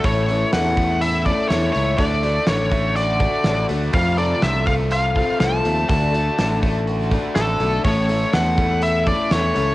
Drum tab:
HH |oooooooo|oooooooo|oooooooo|oooooooo|
SD |--o---o-|--o---o-|--o---o-|--o---o-|
BD |o--o-o--|o--o-o--|o--o-o--|o--o-o--|

HH |oooooooo|
SD |--o---o-|
BD |o--o-o--|